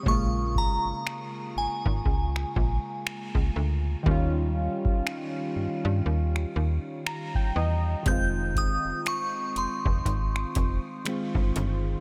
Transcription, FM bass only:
X:1
M:4/4
L:1/16
Q:"Swing 16ths" 1/4=60
K:Bbdor
V:1 name="FM bass" clef=bass
B,,,3 A,,, z2 A,,, A,,, D,,2 B,,, z2 D,, =D,,2 | E,,3 G,, z2 G,, G,, E,,2 E,, z3 =E,,2 | F,,,3 F,,, z2 F,,, F,,, A,,,2 F,,, z2 G,,, G,,,2 |]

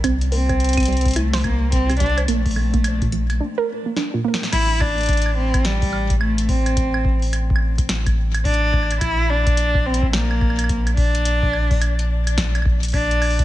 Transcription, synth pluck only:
X:1
M:4/4
L:1/16
Q:"Swing 16ths" 1/4=107
K:Aphr
V:1 name="Synth pluck"
C z B, C z C, G, z E c z3 C, G, c | B, z A, B, z B,, F, z D B z B, D B,, B, B,, | z16 | z16 |
z16 | z16 |]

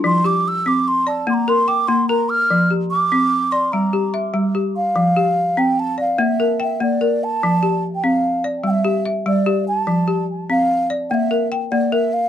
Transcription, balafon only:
X:1
M:12/8
L:1/16
Q:3/8=98
K:F
V:1 name="Balafon"
D z G6 z2 d4 B2 g4 B4- | B2 G6 z2 d4 G2 e4 G4- | G2 G6 z2 d4 B2 g4 B4- | B2 G6 z2 d4 G2 e4 G4- |
G2 G6 z2 d4 B2 g4 B4 |]
V:2 name="Balafon"
F,4 z2 C4 z2 B,4 z2 B,4 z2 | F,4 z2 C4 z2 G,4 z2 G,4 z2 | F,4 z2 C4 z2 B,4 z2 B,4 z2 | F,4 z2 C4 z2 G,4 z2 G,4 z2 |
F,4 z2 C4 z2 B,4 z2 B,4 z2 |]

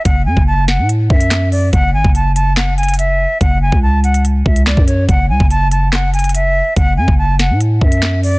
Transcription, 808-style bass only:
X:1
M:4/4
L:1/16
Q:1/4=143
K:F#m
V:1 name="808-style bass" clef=bass
F,,,2 F,, F,,,4 A,,3 F,,6 | F,,,2 G,,, F,,,12 z | F,,,3 C,,6- C,, C,,3 F,,3 | F,,,2 C,, F,,,12 z |
F,,,2 F,, F,,,4 A,,3 F,,6 |]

